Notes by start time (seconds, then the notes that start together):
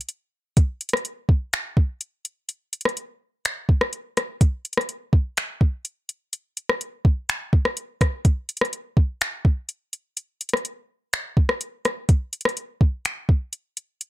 0.01 closed hi-hat
0.09 closed hi-hat
0.57 kick, closed hi-hat
0.81 closed hi-hat
0.89 closed hi-hat
0.93 cross-stick, closed hi-hat
1.05 closed hi-hat
1.29 kick
1.53 finger snap, closed hi-hat
1.77 kick
2.01 closed hi-hat
2.25 closed hi-hat
2.49 closed hi-hat
2.73 closed hi-hat
2.81 closed hi-hat
2.85 cross-stick, closed hi-hat
2.97 closed hi-hat
3.45 finger snap, closed hi-hat
3.69 kick
3.81 cross-stick
3.93 closed hi-hat
4.17 cross-stick, closed hi-hat
4.41 kick, closed hi-hat
4.65 closed hi-hat
4.73 closed hi-hat
4.77 cross-stick, closed hi-hat
4.89 closed hi-hat
5.13 kick
5.37 finger snap, closed hi-hat
5.61 kick
5.85 closed hi-hat
6.09 closed hi-hat
6.33 closed hi-hat
6.57 closed hi-hat
6.69 cross-stick
6.81 closed hi-hat
7.05 kick
7.29 finger snap, closed hi-hat
7.53 kick
7.65 cross-stick
7.77 closed hi-hat
8.01 kick, cross-stick, closed hi-hat
8.25 kick, closed hi-hat
8.49 closed hi-hat
8.57 closed hi-hat
8.61 cross-stick, closed hi-hat
8.73 closed hi-hat
8.97 kick
9.21 finger snap, closed hi-hat
9.45 kick
9.69 closed hi-hat
9.93 closed hi-hat
10.17 closed hi-hat
10.41 closed hi-hat
10.49 closed hi-hat
10.53 cross-stick, closed hi-hat
10.65 closed hi-hat
11.13 finger snap, closed hi-hat
11.37 kick
11.49 cross-stick
11.61 closed hi-hat
11.85 cross-stick, closed hi-hat
12.09 kick, closed hi-hat
12.33 closed hi-hat
12.41 closed hi-hat
12.45 cross-stick, closed hi-hat
12.57 closed hi-hat
12.81 kick
13.05 finger snap, closed hi-hat
13.29 kick
13.53 closed hi-hat
13.77 closed hi-hat
14.01 closed hi-hat